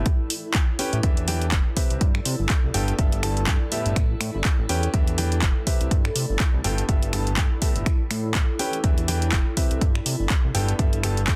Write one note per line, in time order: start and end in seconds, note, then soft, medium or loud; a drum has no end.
0.00 11.36 E4 medium
0.00 11.36 A4 medium
0.06 kick loud
0.06 closed hi-hat medium
0.30 open hi-hat loud
0.54 kick loud
0.54 clap loud
0.54 closed hi-hat medium
0.79 0.96 C#4 medium
0.79 0.96 G4 medium
0.79 0.96 B4 medium
0.79 0.96 G5 loud
0.79 open hi-hat medium
0.93 1.01 A2 medium
0.93 closed hi-hat soft
1.03 1.54 E2 loud
1.03 1.25 E3 medium
1.03 1.25 D4 medium
1.03 1.25 G4 medium
1.03 1.25 B4 medium
1.03 1.25 E5 medium
1.03 kick loud
1.03 closed hi-hat medium
1.17 closed hi-hat soft
1.28 1.45 E3 medium
1.28 1.45 D4 medium
1.28 1.45 G4 medium
1.28 1.45 B4 medium
1.28 1.45 G5 loud
1.28 open hi-hat loud
1.37 3.96 D5 medium
1.42 closed hi-hat soft
1.52 1.62 E1 medium
1.52 kick loud
1.52 clap loud
1.52 closed hi-hat medium
1.77 2.02 C3 medium
1.77 2.02 C4 medium
1.77 2.02 G4 medium
1.77 2.02 B4 medium
1.77 2.02 E5 medium
1.77 kick medium
1.77 open hi-hat medium
1.90 1.98 C2 medium
1.90 closed hi-hat soft
2.01 2.20 G2 loud
2.01 kick loud
2.01 closed hi-hat medium
2.15 finger snap medium
2.25 2.36 C3 medium
2.25 open hi-hat loud
2.39 2.47 G1 medium
2.49 kick loud
2.49 clap loud
2.49 closed hi-hat medium
2.64 2.71 C2 medium
2.74 2.93 G1 medium
2.74 2.91 G2 medium
2.74 2.91 B3 medium
2.74 2.91 G4 medium
2.74 2.91 A4 medium
2.74 2.91 G5 loud
2.74 open hi-hat medium
2.88 closed hi-hat soft
2.99 3.49 G1 medium
2.99 3.20 G2 medium
2.99 3.20 B3 medium
2.99 3.20 G4 medium
2.99 3.20 A4 medium
2.99 3.20 E5 medium
2.99 kick loud
2.99 closed hi-hat medium
3.12 closed hi-hat medium
3.23 3.40 G2 medium
3.23 3.40 B3 medium
3.23 3.40 G4 medium
3.23 3.40 A4 medium
3.23 3.40 A5 loud
3.23 finger snap medium
3.23 open hi-hat loud
3.37 closed hi-hat medium
3.47 3.58 G2 medium
3.47 kick loud
3.47 clap loud
3.47 closed hi-hat medium
3.72 3.95 A2 medium
3.72 3.95 B3 medium
3.72 3.95 G4 medium
3.72 3.95 A4 medium
3.72 3.95 E5 medium
3.72 open hi-hat medium
3.86 3.93 G1 medium
3.86 closed hi-hat medium
3.96 4.15 A1 medium
3.96 finger snap medium
3.96 kick loud
3.96 closed hi-hat medium
4.21 4.31 A2 medium
4.21 finger snap medium
4.21 open hi-hat loud
4.34 4.42 G1 medium
4.45 kick loud
4.45 clap loud
4.45 closed hi-hat medium
4.59 4.67 A1 medium
4.69 4.88 E2 medium
4.69 4.86 C#4 medium
4.69 4.86 G4 medium
4.69 4.86 B4 medium
4.69 4.86 G5 loud
4.69 open hi-hat medium
4.83 closed hi-hat medium
4.94 5.44 E2 loud
4.94 5.16 E3 medium
4.94 5.16 D4 medium
4.94 5.16 G4 medium
4.94 5.16 B4 medium
4.94 5.16 E5 medium
4.94 kick loud
4.94 closed hi-hat medium
5.08 closed hi-hat medium
5.18 5.35 E3 medium
5.18 5.35 D4 medium
5.18 5.35 G4 medium
5.18 5.35 B4 medium
5.18 5.35 G5 loud
5.18 open hi-hat medium
5.27 7.86 D5 medium
5.32 closed hi-hat medium
5.42 5.53 E1 medium
5.42 kick loud
5.42 clap loud
5.42 closed hi-hat medium
5.67 5.92 C3 medium
5.67 5.92 C4 medium
5.67 5.92 G4 medium
5.67 5.92 B4 medium
5.67 5.92 E5 medium
5.67 kick medium
5.67 open hi-hat medium
5.81 5.88 C2 medium
5.81 closed hi-hat medium
5.91 6.10 G2 medium
5.91 kick loud
5.91 closed hi-hat medium
6.05 finger snap medium
6.16 6.26 C3 medium
6.16 open hi-hat loud
6.29 6.37 G1 medium
6.40 kick loud
6.40 clap loud
6.40 closed hi-hat medium
6.54 6.62 C2 medium
6.64 6.83 G1 medium
6.64 6.81 G2 medium
6.64 6.81 B3 medium
6.64 6.81 G4 medium
6.64 6.81 A4 medium
6.64 6.81 G5 loud
6.64 open hi-hat medium
6.78 closed hi-hat medium
6.89 7.39 G1 loud
6.89 7.11 G2 medium
6.89 7.11 B3 medium
6.89 7.11 G4 medium
6.89 7.11 A4 medium
6.89 7.11 E5 medium
6.89 kick loud
6.89 closed hi-hat medium
7.03 closed hi-hat medium
7.13 7.30 G2 medium
7.13 7.30 B3 medium
7.13 7.30 G4 medium
7.13 7.30 A4 medium
7.13 7.30 A5 loud
7.13 finger snap medium
7.13 open hi-hat loud
7.27 closed hi-hat medium
7.37 7.48 G2 medium
7.37 kick loud
7.37 clap loud
7.37 closed hi-hat medium
7.62 7.85 A2 medium
7.62 7.85 B3 medium
7.62 7.85 G4 medium
7.62 7.85 A4 medium
7.62 7.85 E5 medium
7.62 kick medium
7.62 open hi-hat medium
7.76 7.83 G1 medium
7.76 closed hi-hat medium
7.86 finger snap medium
7.86 kick loud
7.86 closed hi-hat medium
8.11 8.43 A2 medium
8.11 finger snap medium
8.11 open hi-hat loud
8.35 kick loud
8.35 clap loud
8.35 closed hi-hat medium
8.59 8.76 C#4 medium
8.59 8.76 G4 medium
8.59 8.76 B4 medium
8.59 8.76 G5 loud
8.59 open hi-hat medium
8.73 closed hi-hat medium
8.84 9.34 E2 loud
8.84 9.06 E3 medium
8.84 9.06 D4 medium
8.84 9.06 G4 medium
8.84 9.06 B4 medium
8.84 9.06 E5 medium
8.84 kick loud
8.84 closed hi-hat medium
8.98 closed hi-hat medium
9.08 9.25 E3 medium
9.08 9.25 D4 medium
9.08 9.25 G4 medium
9.08 9.25 B4 medium
9.08 9.25 G5 medium
9.08 open hi-hat loud
9.18 11.36 D5 medium
9.18 closed hi-hat medium
9.32 9.43 E1 medium
9.32 kick loud
9.32 clap loud
9.32 closed hi-hat medium
9.57 9.82 C3 medium
9.57 9.82 C4 medium
9.57 9.82 G4 medium
9.57 9.82 B4 medium
9.57 9.82 E5 medium
9.57 kick medium
9.57 open hi-hat loud
9.71 9.79 C2 medium
9.71 closed hi-hat medium
9.81 10.00 G2 loud
9.81 kick loud
9.81 closed hi-hat medium
9.95 finger snap medium
10.06 10.16 C3 medium
10.06 open hi-hat loud
10.20 10.27 G1 medium
10.30 kick loud
10.30 clap loud
10.30 closed hi-hat medium
10.44 10.52 C2 medium
10.55 10.73 G1 medium
10.55 10.71 G2 medium
10.55 10.72 B3 medium
10.55 10.72 G4 medium
10.55 10.71 A4 medium
10.55 10.72 G5 loud
10.55 open hi-hat medium
10.69 closed hi-hat medium
10.79 11.29 G1 medium
10.79 11.01 G2 medium
10.79 11.01 B3 medium
10.79 11.01 G4 medium
10.79 11.01 A4 medium
10.79 11.01 E5 medium
10.79 kick loud
10.79 closed hi-hat medium
10.93 closed hi-hat medium
11.03 11.20 G2 medium
11.03 11.20 B3 medium
11.03 11.20 G4 medium
11.03 11.20 A4 medium
11.03 11.20 A5 loud
11.03 finger snap medium
11.03 open hi-hat loud
11.17 closed hi-hat medium
11.27 11.36 G2 medium
11.27 kick loud
11.27 clap loud
11.27 closed hi-hat medium